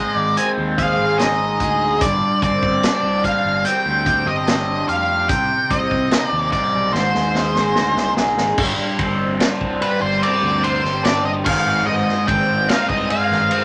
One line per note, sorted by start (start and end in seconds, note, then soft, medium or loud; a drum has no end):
0.00 0.78 G#2 medium
0.00 2.01 G#3 medium
0.00 0.37 C4 medium
0.00 1.98 C4 medium
0.00 1.19 D#4 medium
0.00 1.97 D#4 medium
0.00 1.98 G#4 medium
0.00 8.54 C5 medium
0.00 0.14 D#5 medium
0.14 0.35 G#1 medium
0.14 0.40 D5 medium
0.37 2.43 C4 medium
0.37 0.48 G#5 loud
0.37 closed hi-hat loud
0.57 0.96 D#2 medium
0.78 1.60 G#4 medium
0.78 1.18 F5 medium
0.78 kick medium
0.78 closed hi-hat medium
0.98 1.57 G#1 loud
1.19 2.02 D#4 medium
1.19 2.01 D#5 medium
1.19 snare loud
1.19 closed hi-hat loud
1.60 1.99 D2 medium
1.60 2.02 G#4 medium
1.60 kick medium
1.60 closed hi-hat medium
2.01 2.21 G1 loud
2.01 4.07 G2 medium
2.01 5.26 D3 medium
2.01 8.54 C4 medium
2.01 5.26 G4 medium
2.01 2.42 D5 medium
2.01 kick loud
2.01 closed hi-hat loud
2.42 2.81 G1 loud
2.42 3.65 C4 medium
2.42 3.25 D5 medium
2.42 kick medium
2.42 closed hi-hat medium
2.63 kick medium
2.83 4.46 D4 medium
2.83 snare loud
2.83 closed hi-hat loud
3.03 3.23 C2 loud
3.24 5.30 G3 medium
3.24 3.67 F5 medium
3.24 kick medium
3.24 closed hi-hat medium
3.44 3.64 G1 medium
3.65 5.69 C4 medium
3.65 4.29 G5 loud
3.65 closed hi-hat loud
3.86 4.25 D2 medium
4.06 4.87 G4 medium
4.06 kick medium
4.06 closed hi-hat medium
4.26 4.85 G1 loud
4.26 4.85 D#5 medium
4.47 5.30 D4 medium
4.47 snare loud
4.47 closed hi-hat medium
4.88 5.27 F1 medium
4.88 5.29 G4 medium
4.88 5.27 F5 medium
4.88 closed hi-hat medium
5.29 5.49 C2 loud
5.29 6.94 C3 medium
5.29 8.56 D#3 medium
5.29 6.93 G4 medium
5.29 5.72 G5 loud
5.29 kick loud
5.29 closed hi-hat loud
5.70 6.09 C2 medium
5.70 6.94 C4 medium
5.70 6.29 D#5 medium
5.70 kick medium
5.70 closed hi-hat medium
5.91 kick medium
6.11 6.94 D#4 medium
6.11 snare loud
6.11 closed hi-hat loud
6.29 6.51 D#2 medium
6.29 6.52 D5 medium
6.52 6.94 G3 medium
6.52 6.91 D5 medium
6.52 kick medium
6.52 closed hi-hat medium
6.73 6.93 B1 medium
6.93 7.13 G#1 loud
6.93 8.57 G#2 medium
6.93 8.57 G#4 medium
6.93 8.13 C5 medium
6.93 snare medium
7.14 7.53 D#2 medium
7.14 snare medium
7.35 8.14 G#4 medium
7.35 snare medium
7.55 7.75 G#1 medium
7.55 snare medium
7.75 7.95 D2 medium
7.75 8.58 D#4 medium
7.75 snare medium
7.97 8.15 C2 medium
7.97 snare medium
8.16 8.36 B1 medium
8.16 8.58 G#4 medium
8.16 snare loud
8.37 8.56 G#1 medium
8.37 snare loud
8.57 8.77 G1 loud
8.57 10.63 G2 medium
8.57 13.64 G2 medium
8.57 11.43 D3 medium
8.57 13.64 C4 medium
8.57 11.43 G4 medium
8.57 13.64 C5 medium
8.57 kick loud
8.57 crash loud
8.99 9.38 G1 medium
8.99 10.22 C4 medium
8.99 kick medium
8.99 ride medium
9.40 11.03 D4 medium
9.40 snare loud
9.40 ride loud
9.61 9.80 C2 loud
9.61 kick medium
9.81 11.46 G3 medium
9.81 10.01 B4 medium
9.81 ride medium
10.01 10.21 G1 medium
10.01 10.21 C5 medium
10.22 12.27 C4 medium
10.22 10.65 D5 medium
10.22 ride loud
10.42 10.81 D2 medium
10.63 11.46 G4 medium
10.63 11.02 C5 medium
10.63 ride medium
10.83 11.42 G1 medium
10.83 snare soft
11.04 11.45 D4 medium
11.04 11.24 D5 loud
11.04 snare loud
11.04 ride loud
11.25 11.31 D#5 medium
11.45 11.85 G#1 medium
11.45 11.86 G#2 medium
11.45 13.64 D#4 medium
11.45 13.64 G#4 medium
11.45 11.84 F5 medium
11.45 kick loud
11.45 crash loud
11.86 12.06 G#1 loud
11.86 13.64 G#2 medium
11.86 12.25 D#5 loud
12.09 snare soft
12.28 12.67 G#1 medium
12.28 13.50 C4 medium
12.28 12.70 G5 loud
12.28 kick medium
12.28 ride medium
12.68 13.64 D#4 medium
12.68 12.89 F5 medium
12.68 snare loud
12.68 ride loud
12.89 13.09 C2 medium
12.89 13.10 D#5 loud
12.89 kick medium
13.10 13.64 G#3 medium
13.10 13.64 F5 loud
13.10 ride medium
13.30 13.50 G#1 medium
13.30 snare soft
13.50 13.64 C4 medium
13.50 ride loud